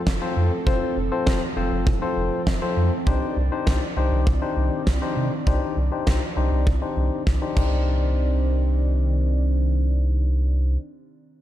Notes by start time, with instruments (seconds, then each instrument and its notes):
Already playing: analog synth pad F3 C4 A4
0.07 analog synth bass F1, kick, snare
0.22 tine electric piano C4 F4 A4 C5
0.37 analog synth bass F2
0.67 analog synth bass F1, tine electric piano C4 F4 A4 C5, kick
0.97 analog synth bass F1
1.12 tine electric piano C4 F4 A4 C5
1.27 analog synth bass F1, kick, snare
1.57 analog synth bass F1, tine electric piano C4 F4 A4 C5
1.72 analog synth bass F1
1.87 analog synth bass F1, kick
2.02 tine electric piano C4 F4 A4 C5
2.17 analog synth bass F1
2.47 analog synth bass F1, kick, snare
2.62 tine electric piano C4 F4 A4 C5
2.77 analog synth bass F2
3.07 analog synth bass C2, analog synth pad D#3 D5, tine electric piano D4 D#4 G4 C5, kick
3.37 analog synth bass C2
3.52 tine electric piano D4 D#4 G4 C5
3.67 analog synth bass C2, kick, snare
3.97 analog synth bass C2, tine electric piano D4 D#4 G4 C5
4.12 analog synth bass C2
4.27 analog synth bass C2, kick
4.42 tine electric piano D4 D#4 G4 C5
4.57 analog synth bass C2
4.87 analog synth bass C2, kick, snare
5.02 tine electric piano D4 D#4 G4 C5
5.17 analog synth bass C3
5.47 analog synth bass C2, tine electric piano D4 D#4 G4 C5, kick
5.77 analog synth bass C2
5.92 tine electric piano D4 D#4 G4 C5
6.07 analog synth bass C2, kick, snare
6.37 analog synth bass C2, tine electric piano D4 D#4 G4 C5
6.52 analog synth bass C2
6.67 analog synth bass C2, kick
6.82 tine electric piano D4 D#4 G4 C5
6.97 analog synth bass C2
7.27 analog synth bass C2, kick, snare
7.42 tine electric piano D4 D#4 G4 C5
7.55 analog synth bass C2, analog synth pad D#3 C4 D5, tine electric piano D4 D#4 G4, kick, crash
7.59 tine electric piano C5